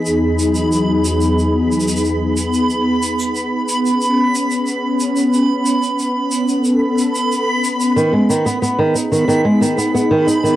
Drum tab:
SH |x---x-x-x---x-x-x---xxxxx---x-x-|x---x-x-x---x-x-x---x-x-x---x-x-|x---x-x-x---x-x-x---x-x-x---x-x-|x---x-x-x---x-x-x---x-x-x---x-x-|